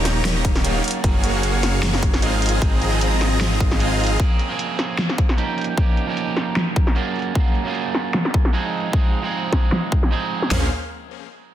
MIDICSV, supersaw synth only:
0, 0, Header, 1, 2, 480
1, 0, Start_track
1, 0, Key_signature, -5, "minor"
1, 0, Tempo, 394737
1, 1263, Time_signature, 4, 2, 24, 8
1, 14036, End_track
2, 0, Start_track
2, 0, Title_t, "Supersaw synth"
2, 0, Program_c, 0, 81
2, 0, Note_on_c, 0, 58, 98
2, 0, Note_on_c, 0, 63, 91
2, 0, Note_on_c, 0, 67, 84
2, 0, Note_on_c, 0, 73, 91
2, 0, Note_on_c, 0, 82, 108
2, 521, Note_off_c, 0, 58, 0
2, 521, Note_off_c, 0, 63, 0
2, 521, Note_off_c, 0, 67, 0
2, 521, Note_off_c, 0, 73, 0
2, 521, Note_off_c, 0, 82, 0
2, 1264, Note_on_c, 0, 58, 85
2, 1264, Note_on_c, 0, 66, 78
2, 1264, Note_on_c, 0, 73, 76
2, 1265, Note_on_c, 0, 68, 72
2, 1265, Note_on_c, 0, 77, 89
2, 2678, Note_off_c, 0, 58, 0
2, 2678, Note_off_c, 0, 66, 0
2, 2678, Note_off_c, 0, 68, 0
2, 2678, Note_off_c, 0, 73, 0
2, 2678, Note_off_c, 0, 77, 0
2, 2704, Note_on_c, 0, 60, 90
2, 2704, Note_on_c, 0, 65, 82
2, 2704, Note_on_c, 0, 68, 78
2, 2704, Note_on_c, 0, 75, 76
2, 2704, Note_on_c, 0, 77, 93
2, 3158, Note_off_c, 0, 60, 0
2, 3158, Note_off_c, 0, 65, 0
2, 3158, Note_off_c, 0, 68, 0
2, 3158, Note_off_c, 0, 75, 0
2, 3158, Note_off_c, 0, 77, 0
2, 3183, Note_on_c, 0, 60, 97
2, 3183, Note_on_c, 0, 65, 86
2, 3183, Note_on_c, 0, 68, 89
2, 4362, Note_off_c, 0, 60, 0
2, 4362, Note_off_c, 0, 65, 0
2, 4362, Note_off_c, 0, 68, 0
2, 4384, Note_on_c, 0, 60, 98
2, 4384, Note_on_c, 0, 68, 96
2, 5078, Note_off_c, 0, 60, 0
2, 5078, Note_off_c, 0, 68, 0
2, 12784, Note_on_c, 0, 58, 91
2, 12784, Note_on_c, 0, 61, 77
2, 12784, Note_on_c, 0, 68, 81
2, 12784, Note_on_c, 0, 77, 96
2, 12785, Note_on_c, 0, 72, 84
2, 12967, Note_off_c, 0, 58, 0
2, 12967, Note_off_c, 0, 61, 0
2, 12967, Note_off_c, 0, 68, 0
2, 12967, Note_off_c, 0, 72, 0
2, 12967, Note_off_c, 0, 77, 0
2, 14036, End_track
0, 0, End_of_file